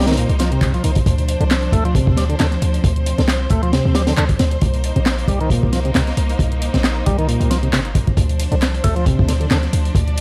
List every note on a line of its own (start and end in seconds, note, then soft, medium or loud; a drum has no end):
0.00 0.25 C2 medium
0.00 1.02 A#3 medium
0.00 1.03 D#4 medium
0.00 8.13 C5 medium
0.00 snare medium
0.00 closed hi-hat medium
0.07 0.16 D#3 loud
0.07 snare loud
0.07 closed hi-hat medium
0.07 closed hi-hat soft
0.12 snare loud
0.12 closed hi-hat medium
0.17 0.28 A#2 loud
0.17 closed hi-hat medium
0.17 closed hi-hat soft
0.29 0.58 C2 medium
0.29 closed hi-hat soft
0.39 0.50 F3 loud
0.39 snare medium
0.39 closed hi-hat medium
0.52 0.61 C3 medium
0.52 closed hi-hat soft
0.61 0.79 C2 medium
0.61 0.73 C3 loud
0.61 kick loud
0.61 clap loud
0.61 closed hi-hat medium
0.61 closed hi-hat soft
0.74 0.83 F3 loud
0.74 closed hi-hat soft
0.84 1.01 C2 medium
0.84 0.91 D#3 medium
0.84 closed hi-hat medium
0.95 kick medium
0.95 closed hi-hat medium
0.95 closed hi-hat soft
1.06 1.36 D2 loud
1.06 4.58 F3 medium
1.06 2.82 D4 medium
1.06 kick loud
1.06 closed hi-hat medium
1.06 closed hi-hat soft
1.18 closed hi-hat soft
1.28 closed hi-hat medium
1.40 1.69 C2 medium
1.40 1.44 D3 loud
1.40 closed hi-hat soft
1.50 snare loud
1.50 clap loud
1.50 closed hi-hat loud
1.50 closed hi-hat soft
1.62 closed hi-hat soft
1.72 2.02 D2 medium
1.72 1.84 A3 loud
1.72 kick medium
1.72 closed hi-hat medium
1.85 1.94 F3 loud
1.85 closed hi-hat soft
1.95 2.16 C3 loud
1.95 kick loud
1.95 closed hi-hat soft
1.95 closed hi-hat loud
2.07 2.36 D2 medium
2.07 kick loud
2.17 2.25 G3 medium
2.17 snare medium
2.17 closed hi-hat medium
2.29 2.35 D3 medium
2.29 closed hi-hat soft
2.39 2.57 D2 medium
2.39 2.47 D3 loud
2.39 snare loud
2.39 clap loud
2.39 closed hi-hat medium
2.39 closed hi-hat soft
2.52 snare soft
2.52 closed hi-hat soft
2.62 2.79 D2 medium
2.62 closed hi-hat medium
2.74 closed hi-hat soft
2.84 3.13 D2 loud
2.84 4.60 C4 medium
2.84 kick loud
2.84 closed hi-hat medium
2.84 closed hi-hat soft
2.96 closed hi-hat soft
3.06 closed hi-hat medium
3.18 3.47 C2 medium
3.18 3.22 D3 loud
3.18 snare medium
3.18 closed hi-hat soft
3.28 snare loud
3.28 clap loud
3.28 closed hi-hat soft
3.28 closed hi-hat loud
3.50 3.80 D2 medium
3.50 3.62 A3 loud
3.50 kick loud
3.50 closed hi-hat medium
3.63 3.72 F3 loud
3.63 closed hi-hat soft
3.73 3.94 C3 loud
3.73 snare loud
3.73 closed hi-hat soft
3.73 closed hi-hat medium
3.85 4.13 D2 loud
3.95 4.02 G3 medium
3.95 snare loud
3.95 closed hi-hat medium
4.07 4.13 D3 medium
4.07 snare loud
4.07 closed hi-hat soft
4.07 closed hi-hat medium
4.17 4.35 D2 medium
4.17 4.24 D3 loud
4.17 clap loud
4.17 closed hi-hat soft
4.29 kick medium
4.29 closed hi-hat medium
4.29 closed hi-hat soft
4.39 4.57 D2 medium
4.39 snare loud
4.39 closed hi-hat medium
4.51 closed hi-hat soft
4.61 4.91 C2 loud
4.61 8.14 A#3 medium
4.61 8.14 D#4 medium
4.61 kick loud
4.61 closed hi-hat medium
4.61 closed hi-hat soft
4.74 closed hi-hat soft
4.84 closed hi-hat medium
4.96 5.24 A#1 medium
4.96 5.00 C3 loud
4.96 closed hi-hat soft
5.06 snare loud
5.06 clap loud
5.06 closed hi-hat soft
5.06 closed hi-hat medium
5.18 closed hi-hat soft
5.28 5.58 C2 medium
5.28 5.39 G3 loud
5.28 kick loud
5.28 closed hi-hat medium
5.41 5.50 D#3 loud
5.41 closed hi-hat soft
5.50 5.72 A#2 loud
5.50 kick loud
5.50 closed hi-hat soft
5.50 closed hi-hat medium
5.63 5.91 C2 medium
5.63 kick medium
5.73 5.80 F3 medium
5.73 snare medium
5.73 closed hi-hat medium
5.85 5.91 C3 medium
5.85 closed hi-hat soft
5.95 6.12 C2 medium
5.95 6.02 C3 loud
5.95 snare loud
5.95 clap loud
5.95 closed hi-hat soft
5.95 closed hi-hat medium
6.07 snare soft
6.07 closed hi-hat soft
6.17 6.34 C2 loud
6.17 closed hi-hat medium
6.29 closed hi-hat soft
6.39 6.69 C2 loud
6.39 kick loud
6.39 closed hi-hat soft
6.39 closed hi-hat medium
6.52 closed hi-hat soft
6.62 closed hi-hat medium
6.74 7.02 A#1 medium
6.74 6.78 C3 loud
6.74 snare medium
6.74 closed hi-hat soft
6.84 snare loud
6.84 clap loud
6.84 closed hi-hat medium
6.84 closed hi-hat soft
7.06 7.36 C2 medium
7.06 7.17 G3 loud
7.06 kick medium
7.06 closed hi-hat medium
7.18 7.27 D#3 loud
7.18 closed hi-hat soft
7.28 7.50 A#2 loud
7.28 closed hi-hat soft
7.28 closed hi-hat medium
7.40 7.74 C2 loud
7.40 closed hi-hat soft
7.50 7.58 F3 medium
7.50 snare medium
7.50 closed hi-hat medium
7.63 7.69 C3 medium
7.63 closed hi-hat soft
7.72 7.97 G1 medium
7.72 7.80 C3 loud
7.72 snare loud
7.72 clap loud
7.72 closed hi-hat soft
7.72 closed hi-hat medium
7.85 closed hi-hat soft
7.95 8.12 C2 medium
7.95 kick loud
7.95 closed hi-hat medium
8.07 kick loud
8.07 closed hi-hat soft
8.17 8.47 D2 loud
8.17 10.21 F3 medium
8.17 10.21 D4 medium
8.17 9.93 C5 medium
8.17 kick loud
8.17 closed hi-hat medium
8.17 closed hi-hat soft
8.29 closed hi-hat soft
8.40 closed hi-hat medium
8.40 ride medium
8.52 8.80 C2 medium
8.52 8.55 D3 loud
8.52 closed hi-hat soft
8.62 snare loud
8.62 clap loud
8.62 closed hi-hat soft
8.62 closed hi-hat medium
8.74 closed hi-hat soft
8.84 9.14 D2 medium
8.84 8.95 A3 loud
8.84 kick medium
8.84 closed hi-hat medium
8.84 ride medium
8.96 9.05 F3 loud
8.96 closed hi-hat soft
9.06 9.27 C3 loud
9.06 kick loud
9.06 closed hi-hat soft
9.06 closed hi-hat medium
9.19 9.47 D2 loud
9.19 kick loud
9.28 9.33 D3 medium
9.28 snare medium
9.28 closed hi-hat medium
9.28 ride medium
9.40 9.47 D3 medium
9.40 closed hi-hat soft
9.51 9.68 D2 medium
9.51 9.58 D3 loud
9.51 snare loud
9.51 clap loud
9.51 closed hi-hat soft
9.51 closed hi-hat medium
9.63 snare soft
9.63 closed hi-hat soft
9.73 9.90 D2 medium
9.73 closed hi-hat medium
9.73 ride medium
9.85 closed hi-hat soft
9.95 10.21 D2 loud
9.95 10.21 D5 medium
9.95 kick loud
9.95 closed hi-hat medium
9.95 closed hi-hat soft
10.08 closed hi-hat soft
10.18 closed hi-hat medium
10.18 ride medium